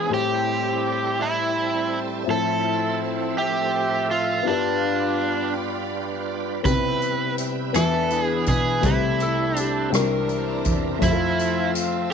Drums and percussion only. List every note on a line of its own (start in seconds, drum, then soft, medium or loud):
6.65 kick medium
6.65 closed hi-hat medium
7.02 closed hi-hat soft
7.38 closed hi-hat medium
7.74 cross-stick medium
7.74 closed hi-hat medium
8.10 closed hi-hat soft
8.46 kick medium
8.46 closed hi-hat soft
8.83 kick medium
8.83 closed hi-hat medium
9.20 closed hi-hat soft
9.56 closed hi-hat medium
9.93 cross-stick medium
9.93 closed hi-hat medium
10.29 closed hi-hat soft
10.65 kick medium
10.65 closed hi-hat soft
11.02 kick medium
11.02 closed hi-hat medium
11.39 closed hi-hat soft
11.75 closed hi-hat medium